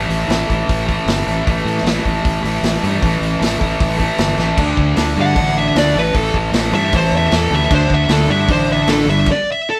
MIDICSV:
0, 0, Header, 1, 5, 480
1, 0, Start_track
1, 0, Tempo, 389864
1, 1804, Time_signature, 4, 2, 24, 8
1, 12062, End_track
2, 0, Start_track
2, 0, Title_t, "Lead electric guitar"
2, 0, Program_c, 0, 29
2, 6415, Note_on_c, 0, 78, 104
2, 6854, Note_off_c, 0, 78, 0
2, 6869, Note_on_c, 0, 76, 81
2, 7088, Note_off_c, 0, 76, 0
2, 7120, Note_on_c, 0, 74, 78
2, 7333, Note_off_c, 0, 74, 0
2, 7367, Note_on_c, 0, 71, 78
2, 7583, Note_off_c, 0, 71, 0
2, 7583, Note_on_c, 0, 69, 108
2, 7805, Note_off_c, 0, 69, 0
2, 8307, Note_on_c, 0, 76, 118
2, 8526, Note_off_c, 0, 76, 0
2, 8572, Note_on_c, 0, 72, 70
2, 8780, Note_off_c, 0, 72, 0
2, 8824, Note_on_c, 0, 76, 86
2, 9026, Note_off_c, 0, 76, 0
2, 9061, Note_on_c, 0, 69, 85
2, 9264, Note_off_c, 0, 69, 0
2, 9288, Note_on_c, 0, 76, 84
2, 9498, Note_off_c, 0, 76, 0
2, 9536, Note_on_c, 0, 72, 90
2, 9742, Note_off_c, 0, 72, 0
2, 9778, Note_on_c, 0, 76, 93
2, 9983, Note_off_c, 0, 76, 0
2, 9994, Note_on_c, 0, 69, 88
2, 10211, Note_off_c, 0, 69, 0
2, 10224, Note_on_c, 0, 76, 99
2, 10446, Note_off_c, 0, 76, 0
2, 10485, Note_on_c, 0, 72, 74
2, 10697, Note_off_c, 0, 72, 0
2, 10740, Note_on_c, 0, 76, 77
2, 10945, Note_off_c, 0, 76, 0
2, 10949, Note_on_c, 0, 69, 69
2, 11169, Note_off_c, 0, 69, 0
2, 11202, Note_on_c, 0, 76, 100
2, 11416, Note_off_c, 0, 76, 0
2, 11469, Note_on_c, 0, 74, 91
2, 11670, Note_off_c, 0, 74, 0
2, 11719, Note_on_c, 0, 76, 90
2, 11916, Note_off_c, 0, 76, 0
2, 11938, Note_on_c, 0, 69, 88
2, 12062, Note_off_c, 0, 69, 0
2, 12062, End_track
3, 0, Start_track
3, 0, Title_t, "Distorted electric guitar"
3, 0, Program_c, 1, 30
3, 0, Note_on_c, 1, 45, 99
3, 0, Note_on_c, 1, 52, 83
3, 0, Note_on_c, 1, 57, 100
3, 340, Note_off_c, 1, 45, 0
3, 345, Note_on_c, 1, 45, 94
3, 376, Note_off_c, 1, 52, 0
3, 380, Note_on_c, 1, 52, 94
3, 404, Note_off_c, 1, 57, 0
3, 409, Note_on_c, 1, 57, 103
3, 587, Note_off_c, 1, 57, 0
3, 592, Note_on_c, 1, 57, 72
3, 654, Note_off_c, 1, 52, 0
3, 659, Note_on_c, 1, 52, 51
3, 1062, Note_off_c, 1, 57, 0
3, 1067, Note_on_c, 1, 57, 72
3, 1126, Note_off_c, 1, 52, 0
3, 1131, Note_on_c, 1, 52, 61
3, 1544, Note_off_c, 1, 57, 0
3, 1549, Note_on_c, 1, 57, 64
3, 1602, Note_off_c, 1, 52, 0
3, 1606, Note_on_c, 1, 52, 62
3, 1774, Note_off_c, 1, 45, 0
3, 1779, Note_on_c, 1, 45, 88
3, 1806, Note_off_c, 1, 52, 0
3, 1811, Note_on_c, 1, 52, 97
3, 1836, Note_off_c, 1, 57, 0
3, 1841, Note_on_c, 1, 57, 94
3, 2262, Note_off_c, 1, 45, 0
3, 2267, Note_on_c, 1, 45, 84
3, 2292, Note_off_c, 1, 52, 0
3, 2297, Note_on_c, 1, 52, 96
3, 2325, Note_off_c, 1, 57, 0
3, 2330, Note_on_c, 1, 57, 109
3, 2493, Note_off_c, 1, 57, 0
3, 2498, Note_on_c, 1, 57, 72
3, 2553, Note_off_c, 1, 52, 0
3, 2558, Note_on_c, 1, 52, 59
3, 2974, Note_off_c, 1, 57, 0
3, 2979, Note_on_c, 1, 57, 70
3, 3020, Note_off_c, 1, 52, 0
3, 3034, Note_on_c, 1, 52, 60
3, 3458, Note_off_c, 1, 57, 0
3, 3463, Note_on_c, 1, 57, 74
3, 3506, Note_off_c, 1, 52, 0
3, 3521, Note_on_c, 1, 52, 56
3, 3700, Note_off_c, 1, 45, 0
3, 3705, Note_on_c, 1, 45, 77
3, 3723, Note_off_c, 1, 52, 0
3, 3738, Note_on_c, 1, 52, 97
3, 3754, Note_off_c, 1, 57, 0
3, 3769, Note_on_c, 1, 57, 94
3, 4166, Note_off_c, 1, 45, 0
3, 4180, Note_on_c, 1, 45, 78
3, 4197, Note_off_c, 1, 52, 0
3, 4212, Note_on_c, 1, 52, 91
3, 4229, Note_off_c, 1, 57, 0
3, 4244, Note_on_c, 1, 57, 90
3, 4410, Note_off_c, 1, 57, 0
3, 4425, Note_on_c, 1, 57, 67
3, 4472, Note_off_c, 1, 52, 0
3, 4486, Note_on_c, 1, 52, 55
3, 4671, Note_off_c, 1, 45, 0
3, 4880, Note_off_c, 1, 57, 0
3, 4895, Note_on_c, 1, 57, 76
3, 4941, Note_off_c, 1, 52, 0
3, 4956, Note_on_c, 1, 52, 61
3, 5366, Note_off_c, 1, 57, 0
3, 5381, Note_on_c, 1, 57, 74
3, 5427, Note_off_c, 1, 52, 0
3, 5442, Note_on_c, 1, 52, 59
3, 5617, Note_off_c, 1, 57, 0
3, 5624, Note_on_c, 1, 50, 94
3, 5635, Note_off_c, 1, 52, 0
3, 5640, Note_on_c, 1, 57, 95
3, 5647, Note_on_c, 1, 62, 111
3, 6096, Note_off_c, 1, 50, 0
3, 6111, Note_on_c, 1, 50, 81
3, 6121, Note_off_c, 1, 57, 0
3, 6126, Note_off_c, 1, 62, 0
3, 6126, Note_on_c, 1, 57, 79
3, 6140, Note_on_c, 1, 62, 87
3, 6350, Note_off_c, 1, 50, 0
3, 6365, Note_on_c, 1, 50, 81
3, 6372, Note_off_c, 1, 57, 0
3, 6372, Note_off_c, 1, 62, 0
3, 6377, Note_on_c, 1, 57, 84
3, 6387, Note_on_c, 1, 62, 90
3, 6579, Note_off_c, 1, 50, 0
3, 6594, Note_on_c, 1, 50, 83
3, 6600, Note_off_c, 1, 57, 0
3, 6602, Note_off_c, 1, 62, 0
3, 6605, Note_on_c, 1, 57, 87
3, 6616, Note_on_c, 1, 62, 107
3, 7054, Note_off_c, 1, 50, 0
3, 7069, Note_on_c, 1, 50, 78
3, 7079, Note_off_c, 1, 57, 0
3, 7082, Note_off_c, 1, 62, 0
3, 7084, Note_on_c, 1, 57, 82
3, 7097, Note_on_c, 1, 62, 97
3, 7300, Note_off_c, 1, 50, 0
3, 7314, Note_off_c, 1, 62, 0
3, 7327, Note_on_c, 1, 45, 99
3, 7333, Note_off_c, 1, 57, 0
3, 7338, Note_on_c, 1, 52, 105
3, 7351, Note_on_c, 1, 57, 110
3, 7551, Note_off_c, 1, 45, 0
3, 7563, Note_off_c, 1, 52, 0
3, 7566, Note_on_c, 1, 45, 103
3, 7578, Note_on_c, 1, 52, 104
3, 7583, Note_off_c, 1, 57, 0
3, 7588, Note_on_c, 1, 57, 98
3, 8018, Note_off_c, 1, 45, 0
3, 8031, Note_off_c, 1, 52, 0
3, 8033, Note_on_c, 1, 45, 83
3, 8045, Note_on_c, 1, 52, 89
3, 8056, Note_off_c, 1, 57, 0
3, 8061, Note_on_c, 1, 57, 86
3, 8262, Note_off_c, 1, 45, 0
3, 8277, Note_off_c, 1, 52, 0
3, 8277, Note_on_c, 1, 45, 83
3, 8289, Note_off_c, 1, 57, 0
3, 8292, Note_on_c, 1, 52, 86
3, 8304, Note_on_c, 1, 57, 92
3, 8505, Note_off_c, 1, 45, 0
3, 8518, Note_off_c, 1, 52, 0
3, 8520, Note_on_c, 1, 45, 101
3, 8531, Note_off_c, 1, 57, 0
3, 8532, Note_on_c, 1, 52, 93
3, 8546, Note_on_c, 1, 57, 95
3, 8987, Note_off_c, 1, 45, 0
3, 9002, Note_on_c, 1, 45, 89
3, 9003, Note_off_c, 1, 52, 0
3, 9018, Note_off_c, 1, 57, 0
3, 9018, Note_on_c, 1, 52, 91
3, 9033, Note_on_c, 1, 57, 92
3, 9231, Note_off_c, 1, 45, 0
3, 9240, Note_off_c, 1, 52, 0
3, 9246, Note_on_c, 1, 45, 81
3, 9250, Note_off_c, 1, 57, 0
3, 9255, Note_on_c, 1, 52, 101
3, 9265, Note_on_c, 1, 57, 104
3, 9469, Note_off_c, 1, 45, 0
3, 9473, Note_off_c, 1, 52, 0
3, 9478, Note_off_c, 1, 57, 0
3, 9485, Note_on_c, 1, 50, 92
3, 9494, Note_on_c, 1, 57, 105
3, 9510, Note_on_c, 1, 62, 94
3, 9943, Note_off_c, 1, 50, 0
3, 9956, Note_off_c, 1, 57, 0
3, 9957, Note_on_c, 1, 50, 83
3, 9967, Note_off_c, 1, 62, 0
3, 9970, Note_on_c, 1, 57, 80
3, 9982, Note_on_c, 1, 62, 79
3, 10184, Note_off_c, 1, 50, 0
3, 10194, Note_off_c, 1, 57, 0
3, 10199, Note_on_c, 1, 50, 88
3, 10205, Note_off_c, 1, 62, 0
3, 10209, Note_on_c, 1, 57, 79
3, 10219, Note_on_c, 1, 62, 105
3, 10430, Note_off_c, 1, 50, 0
3, 10443, Note_off_c, 1, 57, 0
3, 10445, Note_on_c, 1, 50, 95
3, 10457, Note_off_c, 1, 62, 0
3, 10457, Note_on_c, 1, 57, 97
3, 10472, Note_on_c, 1, 62, 117
3, 10908, Note_off_c, 1, 50, 0
3, 10923, Note_on_c, 1, 50, 95
3, 10925, Note_off_c, 1, 57, 0
3, 10934, Note_off_c, 1, 62, 0
3, 10940, Note_on_c, 1, 57, 95
3, 10949, Note_on_c, 1, 62, 104
3, 11149, Note_off_c, 1, 50, 0
3, 11157, Note_off_c, 1, 57, 0
3, 11162, Note_off_c, 1, 62, 0
3, 11168, Note_on_c, 1, 43, 99
3, 11175, Note_on_c, 1, 50, 101
3, 11191, Note_on_c, 1, 55, 102
3, 11391, Note_off_c, 1, 43, 0
3, 11395, Note_off_c, 1, 50, 0
3, 11403, Note_off_c, 1, 55, 0
3, 12062, End_track
4, 0, Start_track
4, 0, Title_t, "Fingered electric bass"
4, 0, Program_c, 2, 33
4, 111, Note_on_c, 2, 33, 90
4, 287, Note_off_c, 2, 33, 0
4, 352, Note_on_c, 2, 33, 86
4, 527, Note_off_c, 2, 33, 0
4, 609, Note_on_c, 2, 33, 73
4, 778, Note_off_c, 2, 33, 0
4, 852, Note_on_c, 2, 33, 85
4, 1191, Note_off_c, 2, 33, 0
4, 1307, Note_on_c, 2, 31, 81
4, 1484, Note_off_c, 2, 31, 0
4, 1563, Note_on_c, 2, 33, 78
4, 1735, Note_off_c, 2, 33, 0
4, 1811, Note_on_c, 2, 33, 84
4, 1980, Note_off_c, 2, 33, 0
4, 2026, Note_on_c, 2, 45, 90
4, 2204, Note_off_c, 2, 45, 0
4, 2259, Note_on_c, 2, 33, 86
4, 2439, Note_off_c, 2, 33, 0
4, 2525, Note_on_c, 2, 33, 80
4, 2696, Note_off_c, 2, 33, 0
4, 2772, Note_on_c, 2, 33, 87
4, 2940, Note_off_c, 2, 33, 0
4, 3004, Note_on_c, 2, 33, 79
4, 3175, Note_off_c, 2, 33, 0
4, 3240, Note_on_c, 2, 33, 85
4, 3412, Note_off_c, 2, 33, 0
4, 3485, Note_on_c, 2, 43, 89
4, 3656, Note_off_c, 2, 43, 0
4, 3718, Note_on_c, 2, 33, 82
4, 3891, Note_off_c, 2, 33, 0
4, 3958, Note_on_c, 2, 33, 81
4, 4131, Note_off_c, 2, 33, 0
4, 4204, Note_on_c, 2, 33, 92
4, 4375, Note_off_c, 2, 33, 0
4, 4443, Note_on_c, 2, 33, 81
4, 4614, Note_off_c, 2, 33, 0
4, 4682, Note_on_c, 2, 33, 86
4, 5024, Note_off_c, 2, 33, 0
4, 5156, Note_on_c, 2, 31, 79
4, 5329, Note_off_c, 2, 31, 0
4, 5393, Note_on_c, 2, 33, 84
4, 5567, Note_off_c, 2, 33, 0
4, 5628, Note_on_c, 2, 38, 81
4, 5841, Note_off_c, 2, 38, 0
4, 5877, Note_on_c, 2, 38, 80
4, 6085, Note_off_c, 2, 38, 0
4, 6123, Note_on_c, 2, 38, 86
4, 6329, Note_off_c, 2, 38, 0
4, 6359, Note_on_c, 2, 43, 86
4, 6566, Note_off_c, 2, 43, 0
4, 6592, Note_on_c, 2, 33, 90
4, 7009, Note_off_c, 2, 33, 0
4, 7085, Note_on_c, 2, 38, 86
4, 7290, Note_off_c, 2, 38, 0
4, 7335, Note_on_c, 2, 33, 94
4, 7535, Note_off_c, 2, 33, 0
4, 7563, Note_on_c, 2, 33, 88
4, 7769, Note_off_c, 2, 33, 0
4, 7807, Note_on_c, 2, 33, 88
4, 8011, Note_off_c, 2, 33, 0
4, 8047, Note_on_c, 2, 33, 97
4, 8251, Note_off_c, 2, 33, 0
4, 8280, Note_on_c, 2, 43, 84
4, 8487, Note_off_c, 2, 43, 0
4, 8534, Note_on_c, 2, 33, 95
4, 8735, Note_off_c, 2, 33, 0
4, 8765, Note_on_c, 2, 40, 87
4, 8969, Note_off_c, 2, 40, 0
4, 9014, Note_on_c, 2, 40, 88
4, 9215, Note_off_c, 2, 40, 0
4, 9245, Note_on_c, 2, 38, 88
4, 9450, Note_off_c, 2, 38, 0
4, 9487, Note_on_c, 2, 38, 95
4, 9691, Note_off_c, 2, 38, 0
4, 9733, Note_on_c, 2, 38, 99
4, 9935, Note_off_c, 2, 38, 0
4, 9960, Note_on_c, 2, 38, 89
4, 10167, Note_off_c, 2, 38, 0
4, 10201, Note_on_c, 2, 43, 90
4, 10408, Note_off_c, 2, 43, 0
4, 10444, Note_on_c, 2, 33, 91
4, 10857, Note_off_c, 2, 33, 0
4, 10914, Note_on_c, 2, 33, 76
4, 11125, Note_off_c, 2, 33, 0
4, 11158, Note_on_c, 2, 31, 89
4, 11368, Note_off_c, 2, 31, 0
4, 12062, End_track
5, 0, Start_track
5, 0, Title_t, "Drums"
5, 128, Note_on_c, 9, 46, 61
5, 251, Note_off_c, 9, 46, 0
5, 371, Note_on_c, 9, 46, 80
5, 379, Note_on_c, 9, 38, 104
5, 494, Note_off_c, 9, 46, 0
5, 502, Note_off_c, 9, 38, 0
5, 615, Note_on_c, 9, 36, 84
5, 617, Note_on_c, 9, 46, 54
5, 738, Note_off_c, 9, 36, 0
5, 740, Note_off_c, 9, 46, 0
5, 853, Note_on_c, 9, 36, 106
5, 854, Note_on_c, 9, 46, 82
5, 976, Note_off_c, 9, 36, 0
5, 977, Note_off_c, 9, 46, 0
5, 1091, Note_on_c, 9, 36, 79
5, 1094, Note_on_c, 9, 46, 51
5, 1214, Note_off_c, 9, 36, 0
5, 1217, Note_off_c, 9, 46, 0
5, 1328, Note_on_c, 9, 46, 82
5, 1336, Note_on_c, 9, 38, 119
5, 1451, Note_off_c, 9, 46, 0
5, 1459, Note_off_c, 9, 38, 0
5, 1573, Note_on_c, 9, 46, 48
5, 1696, Note_off_c, 9, 46, 0
5, 1813, Note_on_c, 9, 36, 113
5, 1821, Note_on_c, 9, 46, 65
5, 1936, Note_off_c, 9, 36, 0
5, 1944, Note_off_c, 9, 46, 0
5, 2062, Note_on_c, 9, 46, 52
5, 2185, Note_off_c, 9, 46, 0
5, 2190, Note_on_c, 9, 38, 30
5, 2298, Note_on_c, 9, 46, 75
5, 2306, Note_off_c, 9, 38, 0
5, 2306, Note_on_c, 9, 38, 115
5, 2421, Note_off_c, 9, 46, 0
5, 2429, Note_off_c, 9, 38, 0
5, 2531, Note_on_c, 9, 36, 78
5, 2539, Note_on_c, 9, 46, 50
5, 2654, Note_off_c, 9, 36, 0
5, 2662, Note_off_c, 9, 46, 0
5, 2771, Note_on_c, 9, 36, 116
5, 2775, Note_on_c, 9, 46, 72
5, 2894, Note_off_c, 9, 36, 0
5, 2898, Note_off_c, 9, 46, 0
5, 3020, Note_on_c, 9, 46, 57
5, 3143, Note_off_c, 9, 46, 0
5, 3245, Note_on_c, 9, 46, 75
5, 3254, Note_on_c, 9, 38, 112
5, 3368, Note_off_c, 9, 46, 0
5, 3377, Note_off_c, 9, 38, 0
5, 3493, Note_on_c, 9, 46, 58
5, 3616, Note_off_c, 9, 46, 0
5, 3724, Note_on_c, 9, 36, 107
5, 3726, Note_on_c, 9, 46, 73
5, 3848, Note_off_c, 9, 36, 0
5, 3849, Note_off_c, 9, 46, 0
5, 3977, Note_on_c, 9, 46, 54
5, 4100, Note_off_c, 9, 46, 0
5, 4215, Note_on_c, 9, 46, 90
5, 4224, Note_on_c, 9, 38, 110
5, 4338, Note_off_c, 9, 46, 0
5, 4347, Note_off_c, 9, 38, 0
5, 4445, Note_on_c, 9, 36, 84
5, 4455, Note_on_c, 9, 46, 55
5, 4568, Note_off_c, 9, 36, 0
5, 4578, Note_off_c, 9, 46, 0
5, 4684, Note_on_c, 9, 36, 118
5, 4686, Note_on_c, 9, 46, 80
5, 4807, Note_off_c, 9, 36, 0
5, 4809, Note_off_c, 9, 46, 0
5, 4918, Note_on_c, 9, 36, 75
5, 4920, Note_on_c, 9, 46, 61
5, 5042, Note_off_c, 9, 36, 0
5, 5043, Note_off_c, 9, 46, 0
5, 5152, Note_on_c, 9, 46, 79
5, 5161, Note_on_c, 9, 38, 115
5, 5275, Note_off_c, 9, 46, 0
5, 5284, Note_off_c, 9, 38, 0
5, 5403, Note_on_c, 9, 38, 60
5, 5526, Note_off_c, 9, 38, 0
5, 5634, Note_on_c, 9, 36, 114
5, 5634, Note_on_c, 9, 49, 107
5, 5757, Note_off_c, 9, 36, 0
5, 5757, Note_off_c, 9, 49, 0
5, 5876, Note_on_c, 9, 36, 88
5, 5999, Note_off_c, 9, 36, 0
5, 6113, Note_on_c, 9, 46, 59
5, 6122, Note_on_c, 9, 38, 110
5, 6237, Note_off_c, 9, 46, 0
5, 6245, Note_off_c, 9, 38, 0
5, 6598, Note_on_c, 9, 46, 62
5, 6600, Note_on_c, 9, 36, 115
5, 6721, Note_off_c, 9, 46, 0
5, 6723, Note_off_c, 9, 36, 0
5, 7091, Note_on_c, 9, 46, 68
5, 7099, Note_on_c, 9, 38, 112
5, 7214, Note_off_c, 9, 46, 0
5, 7222, Note_off_c, 9, 38, 0
5, 7565, Note_on_c, 9, 46, 60
5, 7568, Note_on_c, 9, 36, 113
5, 7688, Note_off_c, 9, 46, 0
5, 7692, Note_off_c, 9, 36, 0
5, 7808, Note_on_c, 9, 36, 82
5, 7931, Note_off_c, 9, 36, 0
5, 8047, Note_on_c, 9, 46, 62
5, 8055, Note_on_c, 9, 38, 125
5, 8170, Note_off_c, 9, 46, 0
5, 8179, Note_off_c, 9, 38, 0
5, 8527, Note_on_c, 9, 46, 62
5, 8533, Note_on_c, 9, 36, 115
5, 8650, Note_off_c, 9, 46, 0
5, 8656, Note_off_c, 9, 36, 0
5, 9008, Note_on_c, 9, 46, 68
5, 9016, Note_on_c, 9, 38, 117
5, 9131, Note_off_c, 9, 46, 0
5, 9139, Note_off_c, 9, 38, 0
5, 9490, Note_on_c, 9, 36, 122
5, 9490, Note_on_c, 9, 57, 97
5, 9613, Note_off_c, 9, 36, 0
5, 9613, Note_off_c, 9, 57, 0
5, 9728, Note_on_c, 9, 36, 89
5, 9851, Note_off_c, 9, 36, 0
5, 9958, Note_on_c, 9, 46, 63
5, 9967, Note_on_c, 9, 38, 111
5, 10081, Note_off_c, 9, 46, 0
5, 10090, Note_off_c, 9, 38, 0
5, 10444, Note_on_c, 9, 46, 59
5, 10448, Note_on_c, 9, 36, 118
5, 10567, Note_off_c, 9, 46, 0
5, 10571, Note_off_c, 9, 36, 0
5, 10925, Note_on_c, 9, 46, 64
5, 10933, Note_on_c, 9, 38, 114
5, 11048, Note_off_c, 9, 46, 0
5, 11057, Note_off_c, 9, 38, 0
5, 11402, Note_on_c, 9, 49, 98
5, 11408, Note_on_c, 9, 36, 104
5, 11525, Note_off_c, 9, 49, 0
5, 11531, Note_off_c, 9, 36, 0
5, 12062, End_track
0, 0, End_of_file